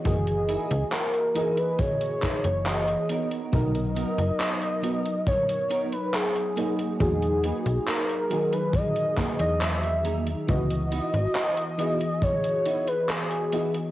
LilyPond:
<<
  \new Staff \with { instrumentName = "Soft synth lead" } { \time 4/4 \key cis \dorian \tempo 4 = 69 gis'4 ais'8. b'16 cis''8. cis''16 dis''8. r16 | dis''2 cis''8. b'16 gis'8. r16 | gis'4 ais'8. b'16 dis''8. dis''16 e''8. r16 | dis''2 cis''8. b'16 gis'8. r16 | }
  \new Staff \with { instrumentName = "Clean electric guitar" } { \time 4/4 \key cis \dorian << { r1 | r1 | r2. dis''8 ais''8 | r1 | } \\ { r8 <dis' e' gis' ais'>16 r8. <dis' e' gis' ais'>16 r8. <dis' e' gis' ais'>16 r8. <b dis' fis' ais'>8~ | <b dis' fis' ais'>8 <b dis' fis' ais'>16 r8. <b dis' fis' ais'>16 r8. <b dis' fis' ais'>16 r8. <ais dis' fis' gis'>8~ | <ais dis' fis' gis'>8 <ais dis' fis' b'>16 r8. <ais dis' fis' gis'>16 r8. <ais dis' fis' gis'>16 r8. <ais dis' fis' gis'>16 r16 | r8 <b dis' e' fis'>16 r8. <b dis' e' fis'>16 r8. <b dis' e' fis'>16 r8. <b dis' e' fis'>16 r16 | } >> }
  \new Staff \with { instrumentName = "FM electric piano" } { \time 4/4 \key cis \dorian <e ais fis' dis''>4. <e ais gis' dis''>2 r8 | <fis b dis' ais'>4. <fis b dis'>2 <fis ais dis' gis'>8 | <fis dis' fis'>4. <dis fis gis'>2~ <dis fis gis'>8 | <e b fis' dis''>4. <e b gis' dis''>2 <e b fis' dis''>8 | }
  \new Staff \with { instrumentName = "FM bass" } { \clef bass \time 4/4 \key cis \dorian fis,,8 r16 cis,16 r4. r16 fis,,8 r8. | b,,8 r16 fis,,16 r2. | e,8 r16 b,,16 r4. r16 e,4 r16 | cis,8 r16 gis,,16 r2. | }
  \new DrumStaff \with { instrumentName = "Drums" } \drummode { \time 4/4 <hh bd>16 hh16 hh16 hh16 <hc hh>16 hh16 hh16 hh16 <hh bd>16 hh16 <hc hh bd>16 hh16 <hc hh>16 hh16 hh16 hh16 | <hh bd>16 hh16 hh16 hh16 <hc hh>16 hh16 hh16 hh16 <hh bd>16 hh16 hh16 hh16 <hc hh>16 hh16 hh16 hh16 | <hh bd>16 hh16 hh16 hh16 <hc hh>16 hh16 hh16 hh16 <hh bd>16 hh16 <hc hh bd>16 hh16 <hc hh>16 hh16 hh16 hh16 | <hh bd>16 hh16 hh16 hh16 <hc hh>16 hh16 hh16 hh16 <hh bd>16 hh16 hh16 hh16 <hc hh>16 hh16 hh16 hh16 | }
>>